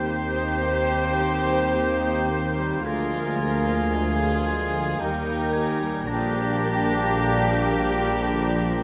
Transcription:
Already playing: cello section D#2, double bass section D#2, tuba D#2, trombone section D#3 A#3, french horn section C4, clarinet D#4, trumpet G4, violin section G4 C5, flute C5, oboe G5
0.07 viola section A#3
0.36 viola section D#4
0.65 viola section A#3
0.93 viola section G3
1.21 viola section D#3
1.48 viola section G3
1.75 viola section A#3
2.03 viola section D#4
2.29 viola section A#3
2.57 viola section G3
2.84 cello section D2, tuba D2, double bass section D2, viola section D3 G#3, trombone section F3, french horn section A#3, clarinet F4, violin section F4 A#4, trumpet G#4, flute A#4, oboe G#5
3.13 viola section F3
3.39 viola section G#3
3.67 viola section A#3
3.94 french horn section G#3, viola section G#3, clarinet F4, flute G#4, violin section G#4, oboe G#5
4.22 viola section F3
4.48 viola section D3
4.74 viola section F3
4.99 cello section D#2, tuba D#2, double bass section D#2, trombone section D#3, viola section D#3 G3, french horn section A#3, clarinet D#4, violin section D#4 A#4, trumpet G4, flute A#4, oboe G5
5.27 viola section G3
5.53 viola section A#3, oboe G#5
5.80 viola section G3
6.07 tuba A#1, double bass section A#1, cello section A#2, viola section D3 F3, trombone section F3 A#3, french horn section G3, violin section D4 G4, clarinet D4, trumpet D4, flute G4, oboe A#5
6.35 viola section F3
6.63 viola section A#3
6.91 viola section F3
7.17 viola section D3
7.45 viola section F3
7.72 viola section A#3
7.98 viola section F3
8.24 viola section D3
8.50 viola section F3
8.76 viola section A#3

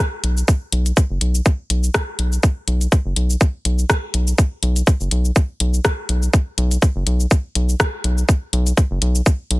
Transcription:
0.24 analog synth bass B1, closed hi-hat
0.37 shaker
0.48 kick, shaker
0.72 analog synth bass B1, closed hi-hat
0.86 closed hi-hat, shaker
0.97 kick, shaker
1.10 analog synth bass F#1
1.21 analog synth bass B1, closed hi-hat
1.35 shaker
1.46 kick, shaker
1.70 analog synth bass B1, closed hi-hat
1.84 shaker
1.94 kick, cross-stick, shaker
2.19 analog synth bass B1, closed hi-hat
2.32 shaker
2.43 kick, shaker
2.68 analog synth bass B1, closed hi-hat
2.81 closed hi-hat, shaker
2.92 kick, shaker
3.06 analog synth bass F#1
3.16 analog synth bass B1, closed hi-hat
3.30 shaker
3.41 kick, shaker
3.65 analog synth bass B1, closed hi-hat
3.79 shaker
3.90 kick, cross-stick, shaker
4.14 analog synth bass B1, closed hi-hat
4.27 shaker
4.38 kick, shaker
4.63 analog synth bass B1, closed hi-hat
4.76 closed hi-hat, shaker
4.87 kick, shaker
5.01 analog synth bass F#1, shaker
5.11 analog synth bass B1, closed hi-hat
5.25 shaker
5.36 kick, shaker
5.60 analog synth bass B1, closed hi-hat
5.74 shaker
5.85 kick, cross-stick, shaker
6.09 analog synth bass B1, closed hi-hat
6.23 shaker
6.33 kick, shaker
6.58 analog synth bass B1, closed hi-hat
6.71 closed hi-hat, shaker
6.82 kick, shaker
6.96 analog synth bass F#1
7.07 analog synth bass B1, closed hi-hat
7.20 shaker
7.31 kick, shaker
7.55 analog synth bass B1, closed hi-hat
7.69 shaker
7.80 kick, cross-stick, shaker
8.04 analog synth bass B1, closed hi-hat
8.18 shaker
8.29 kick, shaker
8.53 analog synth bass B1, closed hi-hat
8.67 closed hi-hat, shaker
8.77 kick, shaker
8.91 analog synth bass F#1
9.02 analog synth bass B1, closed hi-hat
9.15 shaker
9.26 kick, shaker
9.51 analog synth bass B1, closed hi-hat

